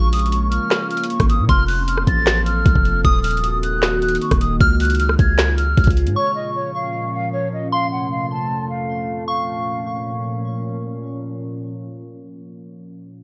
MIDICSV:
0, 0, Header, 1, 6, 480
1, 0, Start_track
1, 0, Key_signature, -5, "minor"
1, 0, Tempo, 389610
1, 1833, Time_signature, 4, 2, 24, 8
1, 16304, End_track
2, 0, Start_track
2, 0, Title_t, "Flute"
2, 0, Program_c, 0, 73
2, 158, Note_on_c, 0, 87, 93
2, 343, Note_off_c, 0, 87, 0
2, 395, Note_on_c, 0, 85, 84
2, 581, Note_off_c, 0, 85, 0
2, 622, Note_on_c, 0, 89, 81
2, 1078, Note_off_c, 0, 89, 0
2, 1117, Note_on_c, 0, 89, 94
2, 1303, Note_off_c, 0, 89, 0
2, 1361, Note_on_c, 0, 85, 91
2, 1545, Note_off_c, 0, 85, 0
2, 1595, Note_on_c, 0, 87, 88
2, 1781, Note_off_c, 0, 87, 0
2, 1841, Note_on_c, 0, 89, 110
2, 2025, Note_off_c, 0, 89, 0
2, 2065, Note_on_c, 0, 90, 90
2, 2255, Note_off_c, 0, 90, 0
2, 2316, Note_on_c, 0, 89, 81
2, 2502, Note_off_c, 0, 89, 0
2, 2554, Note_on_c, 0, 93, 95
2, 3005, Note_off_c, 0, 93, 0
2, 3028, Note_on_c, 0, 89, 97
2, 3707, Note_off_c, 0, 89, 0
2, 3752, Note_on_c, 0, 87, 118
2, 3939, Note_off_c, 0, 87, 0
2, 3988, Note_on_c, 0, 89, 93
2, 4177, Note_off_c, 0, 89, 0
2, 4232, Note_on_c, 0, 87, 82
2, 4419, Note_off_c, 0, 87, 0
2, 4475, Note_on_c, 0, 90, 80
2, 4925, Note_off_c, 0, 90, 0
2, 4952, Note_on_c, 0, 90, 97
2, 5139, Note_off_c, 0, 90, 0
2, 5199, Note_on_c, 0, 85, 85
2, 5384, Note_off_c, 0, 85, 0
2, 5431, Note_on_c, 0, 87, 77
2, 5618, Note_off_c, 0, 87, 0
2, 5670, Note_on_c, 0, 89, 102
2, 5858, Note_off_c, 0, 89, 0
2, 5922, Note_on_c, 0, 90, 86
2, 6105, Note_off_c, 0, 90, 0
2, 6150, Note_on_c, 0, 89, 93
2, 6338, Note_off_c, 0, 89, 0
2, 6395, Note_on_c, 0, 92, 88
2, 6845, Note_off_c, 0, 92, 0
2, 6873, Note_on_c, 0, 89, 93
2, 7267, Note_off_c, 0, 89, 0
2, 7589, Note_on_c, 0, 73, 112
2, 7777, Note_off_c, 0, 73, 0
2, 7828, Note_on_c, 0, 75, 85
2, 8017, Note_off_c, 0, 75, 0
2, 8077, Note_on_c, 0, 73, 86
2, 8263, Note_off_c, 0, 73, 0
2, 8310, Note_on_c, 0, 77, 80
2, 8763, Note_off_c, 0, 77, 0
2, 8798, Note_on_c, 0, 77, 87
2, 8983, Note_off_c, 0, 77, 0
2, 9031, Note_on_c, 0, 73, 91
2, 9219, Note_off_c, 0, 73, 0
2, 9280, Note_on_c, 0, 75, 78
2, 9464, Note_off_c, 0, 75, 0
2, 9517, Note_on_c, 0, 77, 104
2, 9702, Note_off_c, 0, 77, 0
2, 9753, Note_on_c, 0, 78, 83
2, 9940, Note_off_c, 0, 78, 0
2, 9993, Note_on_c, 0, 77, 82
2, 10180, Note_off_c, 0, 77, 0
2, 10240, Note_on_c, 0, 81, 84
2, 10688, Note_off_c, 0, 81, 0
2, 10711, Note_on_c, 0, 77, 86
2, 11389, Note_off_c, 0, 77, 0
2, 11433, Note_on_c, 0, 77, 89
2, 12824, Note_off_c, 0, 77, 0
2, 16304, End_track
3, 0, Start_track
3, 0, Title_t, "Synth bell"
3, 0, Program_c, 1, 98
3, 0, Note_on_c, 1, 85, 103
3, 1304, Note_off_c, 1, 85, 0
3, 1835, Note_on_c, 1, 84, 97
3, 3225, Note_off_c, 1, 84, 0
3, 3753, Note_on_c, 1, 87, 98
3, 5144, Note_off_c, 1, 87, 0
3, 5675, Note_on_c, 1, 89, 112
3, 7065, Note_off_c, 1, 89, 0
3, 7592, Note_on_c, 1, 85, 97
3, 8983, Note_off_c, 1, 85, 0
3, 9515, Note_on_c, 1, 84, 92
3, 10905, Note_off_c, 1, 84, 0
3, 11432, Note_on_c, 1, 85, 79
3, 12823, Note_off_c, 1, 85, 0
3, 16304, End_track
4, 0, Start_track
4, 0, Title_t, "Ambient pad"
4, 0, Program_c, 2, 92
4, 0, Note_on_c, 2, 53, 78
4, 0, Note_on_c, 2, 58, 71
4, 0, Note_on_c, 2, 61, 84
4, 1814, Note_off_c, 2, 53, 0
4, 1814, Note_off_c, 2, 58, 0
4, 1814, Note_off_c, 2, 61, 0
4, 1833, Note_on_c, 2, 53, 77
4, 1833, Note_on_c, 2, 60, 70
4, 1833, Note_on_c, 2, 69, 85
4, 3734, Note_off_c, 2, 53, 0
4, 3734, Note_off_c, 2, 60, 0
4, 3734, Note_off_c, 2, 69, 0
4, 3753, Note_on_c, 2, 51, 79
4, 3753, Note_on_c, 2, 58, 70
4, 3753, Note_on_c, 2, 66, 85
4, 5654, Note_off_c, 2, 51, 0
4, 5654, Note_off_c, 2, 58, 0
4, 5654, Note_off_c, 2, 66, 0
4, 5673, Note_on_c, 2, 49, 78
4, 5673, Note_on_c, 2, 56, 72
4, 5673, Note_on_c, 2, 65, 86
4, 7574, Note_off_c, 2, 49, 0
4, 7574, Note_off_c, 2, 56, 0
4, 7574, Note_off_c, 2, 65, 0
4, 7593, Note_on_c, 2, 46, 76
4, 7594, Note_on_c, 2, 53, 68
4, 7594, Note_on_c, 2, 61, 83
4, 9494, Note_off_c, 2, 46, 0
4, 9494, Note_off_c, 2, 53, 0
4, 9494, Note_off_c, 2, 61, 0
4, 9513, Note_on_c, 2, 57, 84
4, 9514, Note_on_c, 2, 41, 74
4, 9514, Note_on_c, 2, 48, 70
4, 11414, Note_off_c, 2, 41, 0
4, 11414, Note_off_c, 2, 48, 0
4, 11414, Note_off_c, 2, 57, 0
4, 11433, Note_on_c, 2, 46, 75
4, 11433, Note_on_c, 2, 53, 70
4, 11433, Note_on_c, 2, 61, 80
4, 15563, Note_off_c, 2, 46, 0
4, 15563, Note_off_c, 2, 53, 0
4, 15563, Note_off_c, 2, 61, 0
4, 16304, End_track
5, 0, Start_track
5, 0, Title_t, "808-style bass"
5, 0, Program_c, 3, 38
5, 0, Note_on_c, 3, 34, 113
5, 719, Note_off_c, 3, 34, 0
5, 1474, Note_on_c, 3, 32, 110
5, 1713, Note_on_c, 3, 46, 98
5, 1731, Note_off_c, 3, 32, 0
5, 1827, Note_off_c, 3, 46, 0
5, 1833, Note_on_c, 3, 29, 113
5, 2524, Note_off_c, 3, 29, 0
5, 2553, Note_on_c, 3, 33, 105
5, 3244, Note_off_c, 3, 33, 0
5, 3273, Note_on_c, 3, 36, 111
5, 3388, Note_off_c, 3, 36, 0
5, 3393, Note_on_c, 3, 29, 111
5, 3739, Note_off_c, 3, 29, 0
5, 3752, Note_on_c, 3, 27, 116
5, 5143, Note_off_c, 3, 27, 0
5, 5313, Note_on_c, 3, 27, 108
5, 5659, Note_off_c, 3, 27, 0
5, 5673, Note_on_c, 3, 37, 115
5, 6364, Note_off_c, 3, 37, 0
5, 6393, Note_on_c, 3, 37, 109
5, 7084, Note_off_c, 3, 37, 0
5, 7113, Note_on_c, 3, 37, 111
5, 7228, Note_off_c, 3, 37, 0
5, 7234, Note_on_c, 3, 37, 113
5, 7473, Note_on_c, 3, 44, 98
5, 7491, Note_off_c, 3, 37, 0
5, 7587, Note_off_c, 3, 44, 0
5, 16304, End_track
6, 0, Start_track
6, 0, Title_t, "Drums"
6, 154, Note_on_c, 9, 42, 86
6, 154, Note_on_c, 9, 46, 90
6, 233, Note_off_c, 9, 42, 0
6, 233, Note_on_c, 9, 42, 68
6, 277, Note_off_c, 9, 46, 0
6, 313, Note_off_c, 9, 42, 0
6, 313, Note_on_c, 9, 42, 49
6, 393, Note_off_c, 9, 42, 0
6, 393, Note_on_c, 9, 42, 92
6, 516, Note_off_c, 9, 42, 0
6, 633, Note_on_c, 9, 42, 87
6, 756, Note_off_c, 9, 42, 0
6, 871, Note_on_c, 9, 39, 97
6, 873, Note_on_c, 9, 42, 65
6, 874, Note_on_c, 9, 38, 120
6, 994, Note_off_c, 9, 39, 0
6, 997, Note_off_c, 9, 38, 0
6, 997, Note_off_c, 9, 42, 0
6, 1113, Note_on_c, 9, 42, 51
6, 1193, Note_off_c, 9, 42, 0
6, 1193, Note_on_c, 9, 42, 69
6, 1274, Note_off_c, 9, 42, 0
6, 1274, Note_on_c, 9, 42, 83
6, 1354, Note_off_c, 9, 42, 0
6, 1354, Note_on_c, 9, 42, 56
6, 1473, Note_off_c, 9, 42, 0
6, 1473, Note_on_c, 9, 42, 89
6, 1474, Note_on_c, 9, 36, 98
6, 1474, Note_on_c, 9, 37, 100
6, 1593, Note_off_c, 9, 42, 0
6, 1593, Note_on_c, 9, 42, 88
6, 1597, Note_off_c, 9, 36, 0
6, 1597, Note_off_c, 9, 37, 0
6, 1716, Note_off_c, 9, 42, 0
6, 1833, Note_on_c, 9, 36, 112
6, 1833, Note_on_c, 9, 42, 77
6, 1956, Note_off_c, 9, 36, 0
6, 1956, Note_off_c, 9, 42, 0
6, 2073, Note_on_c, 9, 46, 91
6, 2196, Note_off_c, 9, 46, 0
6, 2313, Note_on_c, 9, 42, 92
6, 2433, Note_on_c, 9, 37, 88
6, 2436, Note_off_c, 9, 42, 0
6, 2553, Note_on_c, 9, 36, 99
6, 2553, Note_on_c, 9, 42, 85
6, 2556, Note_off_c, 9, 37, 0
6, 2676, Note_off_c, 9, 36, 0
6, 2677, Note_off_c, 9, 42, 0
6, 2790, Note_on_c, 9, 39, 94
6, 2793, Note_on_c, 9, 38, 118
6, 2793, Note_on_c, 9, 42, 65
6, 2914, Note_off_c, 9, 39, 0
6, 2916, Note_off_c, 9, 42, 0
6, 2917, Note_off_c, 9, 38, 0
6, 3033, Note_on_c, 9, 42, 81
6, 3156, Note_off_c, 9, 42, 0
6, 3273, Note_on_c, 9, 36, 104
6, 3273, Note_on_c, 9, 42, 87
6, 3393, Note_off_c, 9, 36, 0
6, 3393, Note_on_c, 9, 36, 96
6, 3396, Note_off_c, 9, 42, 0
6, 3513, Note_on_c, 9, 42, 79
6, 3517, Note_off_c, 9, 36, 0
6, 3636, Note_off_c, 9, 42, 0
6, 3752, Note_on_c, 9, 36, 116
6, 3752, Note_on_c, 9, 42, 76
6, 3876, Note_off_c, 9, 36, 0
6, 3876, Note_off_c, 9, 42, 0
6, 3992, Note_on_c, 9, 42, 86
6, 3992, Note_on_c, 9, 46, 91
6, 4073, Note_off_c, 9, 42, 0
6, 4073, Note_on_c, 9, 42, 68
6, 4116, Note_off_c, 9, 46, 0
6, 4153, Note_off_c, 9, 42, 0
6, 4153, Note_on_c, 9, 42, 52
6, 4233, Note_off_c, 9, 42, 0
6, 4233, Note_on_c, 9, 42, 90
6, 4356, Note_off_c, 9, 42, 0
6, 4473, Note_on_c, 9, 42, 89
6, 4596, Note_off_c, 9, 42, 0
6, 4711, Note_on_c, 9, 39, 95
6, 4713, Note_on_c, 9, 42, 66
6, 4714, Note_on_c, 9, 38, 117
6, 4834, Note_off_c, 9, 39, 0
6, 4836, Note_off_c, 9, 42, 0
6, 4837, Note_off_c, 9, 38, 0
6, 4952, Note_on_c, 9, 42, 53
6, 5033, Note_off_c, 9, 42, 0
6, 5033, Note_on_c, 9, 42, 69
6, 5112, Note_off_c, 9, 42, 0
6, 5112, Note_on_c, 9, 42, 86
6, 5193, Note_off_c, 9, 42, 0
6, 5193, Note_on_c, 9, 42, 56
6, 5313, Note_off_c, 9, 42, 0
6, 5313, Note_on_c, 9, 42, 90
6, 5314, Note_on_c, 9, 36, 97
6, 5314, Note_on_c, 9, 37, 99
6, 5433, Note_off_c, 9, 42, 0
6, 5433, Note_on_c, 9, 42, 91
6, 5437, Note_off_c, 9, 36, 0
6, 5437, Note_off_c, 9, 37, 0
6, 5556, Note_off_c, 9, 42, 0
6, 5673, Note_on_c, 9, 36, 117
6, 5673, Note_on_c, 9, 42, 76
6, 5796, Note_off_c, 9, 36, 0
6, 5796, Note_off_c, 9, 42, 0
6, 5913, Note_on_c, 9, 42, 71
6, 5913, Note_on_c, 9, 46, 91
6, 5973, Note_off_c, 9, 42, 0
6, 5973, Note_on_c, 9, 42, 72
6, 6033, Note_off_c, 9, 42, 0
6, 6033, Note_on_c, 9, 42, 73
6, 6036, Note_off_c, 9, 46, 0
6, 6093, Note_off_c, 9, 42, 0
6, 6093, Note_on_c, 9, 42, 71
6, 6153, Note_off_c, 9, 42, 0
6, 6153, Note_on_c, 9, 42, 93
6, 6273, Note_on_c, 9, 37, 91
6, 6276, Note_off_c, 9, 42, 0
6, 6393, Note_on_c, 9, 36, 100
6, 6393, Note_on_c, 9, 42, 87
6, 6396, Note_off_c, 9, 37, 0
6, 6516, Note_off_c, 9, 36, 0
6, 6516, Note_off_c, 9, 42, 0
6, 6631, Note_on_c, 9, 39, 94
6, 6633, Note_on_c, 9, 42, 64
6, 6634, Note_on_c, 9, 38, 123
6, 6754, Note_off_c, 9, 39, 0
6, 6756, Note_off_c, 9, 42, 0
6, 6757, Note_off_c, 9, 38, 0
6, 6873, Note_on_c, 9, 42, 86
6, 6996, Note_off_c, 9, 42, 0
6, 7113, Note_on_c, 9, 36, 101
6, 7113, Note_on_c, 9, 42, 76
6, 7193, Note_off_c, 9, 42, 0
6, 7193, Note_on_c, 9, 42, 75
6, 7234, Note_off_c, 9, 36, 0
6, 7234, Note_on_c, 9, 36, 93
6, 7273, Note_off_c, 9, 42, 0
6, 7273, Note_on_c, 9, 42, 74
6, 7353, Note_off_c, 9, 42, 0
6, 7353, Note_on_c, 9, 42, 69
6, 7357, Note_off_c, 9, 36, 0
6, 7473, Note_off_c, 9, 42, 0
6, 7473, Note_on_c, 9, 42, 71
6, 7596, Note_off_c, 9, 42, 0
6, 16304, End_track
0, 0, End_of_file